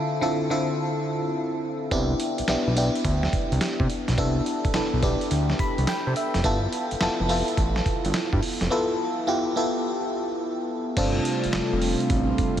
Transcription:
Already playing: fm electric piano D3 C4 E4 F4 A4
0.21 fm electric piano D3 C4 E4 F4 A4
0.50 fm electric piano D3 C4 E4 F4 A4
1.91 analog synth bass C2, fm electric piano B3 D4 E4 G4, kick, closed hi-hat
2.20 closed hi-hat
2.38 analog synth bass B1, closed hi-hat
2.48 analog synth bass B1, fm electric piano B3 D4 E4 G4, snare, clap, closed hi-hat
2.67 analog synth bass B1
2.77 fm electric piano B3 D4 E4 G4, closed hi-hat
2.95 closed hi-hat
3.05 analog synth bass D2, kick, closed hi-hat
3.23 snare
3.33 kick, closed hi-hat
3.52 analog synth bass C2, closed hi-hat
3.61 snare, clap, closed hi-hat
3.80 analog synth bass C3, kick
3.90 closed hi-hat
4.08 analog synth bass B1, snare, closed hi-hat
4.18 analog synth bass C2, fm electric piano B3 D4 E4 A4, kick, closed hi-hat
4.46 closed hi-hat
4.65 analog synth bass B1, kick, closed hi-hat
4.74 analog synth bass B1, fm electric piano B3 D4 E4 A4, snare, clap, closed hi-hat
4.93 analog synth bass B1
5.03 fm electric piano B3 D4 E4 G4, kick, closed hi-hat
5.21 closed hi-hat
5.31 analog synth bass D2, closed hi-hat
5.50 snare
5.59 fm electric piano B5, kick, closed hi-hat
5.78 analog synth bass C2, closed hi-hat
5.87 fm electric piano G5, snare, clap, closed hi-hat
6.07 analog synth bass C3
6.16 fm electric piano E5, closed hi-hat
6.34 analog synth bass F1, snare, closed hi-hat
6.44 analog synth bass G1, fm electric piano B3 E4 F4 A4, kick, closed hi-hat
6.73 closed hi-hat
6.91 analog synth bass F1, closed hi-hat
7.01 analog synth bass F1, fm electric piano B3 E4 F4 A4, snare, clap, closed hi-hat
7.20 analog synth bass F1
7.29 fm electric piano B3 E4 F4 A4, open hi-hat
7.48 closed hi-hat
7.57 analog synth bass A1, kick, closed hi-hat
7.76 snare
7.86 kick, closed hi-hat
8.05 analog synth bass G1, closed hi-hat
8.14 snare, clap, closed hi-hat
8.33 analog synth bass G2, kick
8.42 open hi-hat
8.61 analog synth bass F1, snare, closed hi-hat
8.71 fm electric piano B3 E4 F4 A4
9.27 fm electric piano B3 E4 F4 G4
9.56 fm electric piano B3 E4 F4 A4
10.97 analog synth bass G1, analog synth pad C3 G3 A3 F4, fm electric piano C4 D4 F4 A4, kick, closed hi-hat, crash
11.25 closed hi-hat
11.44 analog synth bass F1, closed hi-hat
11.53 analog synth bass F1, snare, clap, closed hi-hat
11.73 analog synth bass F1
11.82 open hi-hat
12.00 closed hi-hat
12.10 analog synth bass A1, kick, closed hi-hat
12.38 kick, closed hi-hat

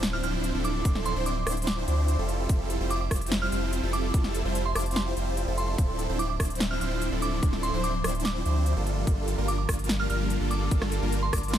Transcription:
Already playing: sub bass D1, supersaw synth F3 C4 D4 E4 C5, ambient pad F3 E5 C6, sub drop
0.03 snare
0.13 synth bell F6
0.23 sub bass D1, supersaw synth F3 C4 D4 E4 C5, synth bell F6, closed hi-hat
0.44 closed hi-hat
0.54 sub bass D1, supersaw synth F3 C4 D4 E4 A4
0.65 synth bell D6, closed hi-hat
0.85 sub bass D1, supersaw synth F3 C4 D4, kick, closed hi-hat
0.95 snare
1.06 synth bell C6, closed hi-hat
1.16 sub bass D1, supersaw synth F3 C4 D4 E4 C5
1.26 synth bell D6, closed hi-hat
1.47 sub bass D1, supersaw synth F3 C4 D4 E4 C5, cross-stick, open hi-hat
1.52 closed hi-hat
1.57 closed hi-hat
1.62 closed hi-hat
1.67 synth bell D6, snare, closed hi-hat
1.88 sub bass D2, supersaw synth F3 C4 D4 E4 C5, closed hi-hat
2.08 closed hi-hat
2.18 sub bass F1, supersaw synth G3 C4 E4 F4 A4
2.29 ambient pad G4 A5, closed hi-hat
2.49 sub bass F1, supersaw synth G3 C4 E4 F4 A4, kick, closed hi-hat
2.70 closed hi-hat
2.80 sub bass F1, supersaw synth G3 C4 E4 F4 C5
2.90 synth bell D6, closed hi-hat
3.01 synth bell D6
3.11 sub bass F1, supersaw synth G3 C4 E4 F4 C5, kick, cross-stick, open hi-hat
3.16 closed hi-hat
3.21 closed hi-hat
3.26 closed hi-hat
3.32 snare, closed hi-hat
3.42 synth bell F6
3.52 sub bass F1, supersaw synth G3 C4 E4 F4 C5, synth bell F6, closed hi-hat
3.73 closed hi-hat
3.83 sub bass F1, supersaw synth G3 C4 E4 F4 A4
3.93 synth bell D6, closed hi-hat
4.14 sub bass F1, supersaw synth G3 C4 E4 F4 A4, kick, closed hi-hat
4.24 snare
4.34 closed hi-hat
4.45 sub bass F1, supersaw synth G3 C4 E4 F4 C5
4.55 closed hi-hat
4.65 synth bell C6
4.75 sub bass F1, supersaw synth G3 C4 E4 F4 C5, synth bell D6, cross-stick, open hi-hat
4.81 closed hi-hat
4.86 closed hi-hat
4.91 closed hi-hat
4.96 synth bell C6, snare, closed hi-hat
5.17 sub bass F1, supersaw synth G3 C4 E4 F4 C5, closed hi-hat
5.37 closed hi-hat
5.47 sub bass F1, supersaw synth G3 C4 E4 F4 A4
5.58 synth bell C6, closed hi-hat
5.68 synth bell C6
5.78 sub bass D1, ambient pad F3 C6, supersaw synth F3 C4 E4 A4, kick, closed hi-hat
5.99 closed hi-hat
6.09 sub bass D1, supersaw synth F3 C4 D4 E4 C5
6.19 synth bell D6, closed hi-hat
6.30 synth bell D6
6.40 sub bass D1, supersaw synth F3 C4 D4 E4 C5, kick, cross-stick, open hi-hat
6.45 closed hi-hat
6.50 closed hi-hat
6.55 closed hi-hat
6.60 snare, closed hi-hat
6.71 synth bell F6
6.81 sub bass D1, supersaw synth F3 C4 D4 E4 C5, synth bell F6, closed hi-hat
7.02 closed hi-hat
7.12 sub bass D1, supersaw synth F3 C4 D4 E4 A4
7.22 synth bell D6, closed hi-hat
7.43 sub bass D1, supersaw synth F3 C4 D4 E4 A4, kick, closed hi-hat
7.53 snare
7.63 synth bell C6, closed hi-hat
7.73 sub bass D1, supersaw synth F3 C4 D4 E4 C5
7.84 synth bell D6, closed hi-hat
8.04 sub bass D1, supersaw synth F3 C4 D4 E4 C5, cross-stick, open hi-hat
8.09 closed hi-hat
8.15 closed hi-hat
8.20 closed hi-hat
8.25 synth bell D6, snare, closed hi-hat
8.45 sub bass D2, supersaw synth F3 C4 D4 E4 C5, closed hi-hat
8.66 closed hi-hat
8.76 sub bass G1, supersaw synth G3 A#3 D4 F4 A4
8.86 ambient pad F3 A#4 A5, closed hi-hat
9.07 sub bass G1, supersaw synth A#3, kick, closed hi-hat
9.28 closed hi-hat
9.38 sub bass G1, supersaw synth G3 A#3 D4 F4 A#4
9.48 synth bell D6, closed hi-hat
9.58 synth bell D6
9.69 sub bass G1, supersaw synth G3 A#3 D4 F4 A#4, kick, cross-stick, open hi-hat
9.74 closed hi-hat
9.79 closed hi-hat
9.84 closed hi-hat
9.89 snare, closed hi-hat
10.00 synth bell F6
10.10 sub bass G1, supersaw synth G3 A#3 D4 F4 A#4, synth bell F6, closed hi-hat
10.30 closed hi-hat
10.41 sub bass G1, supersaw synth G3 A#3 D4 F4 A4
10.51 synth bell D6, closed hi-hat
10.71 sub bass G1, supersaw synth G3 A#3 D4 F4 A4, kick, closed hi-hat
10.82 cross-stick, snare
10.92 closed hi-hat
11.02 sub bass G1, supersaw synth G3 A#3 D4 F4 A#4
11.12 closed hi-hat
11.22 synth bell C6
11.33 sub bass G1, supersaw synth G3 A#3 D4 F4 A#4, synth bell D6, kick, cross-stick, open hi-hat
11.38 closed hi-hat
11.43 closed hi-hat
11.48 closed hi-hat
11.53 synth bell C6, snare, closed hi-hat

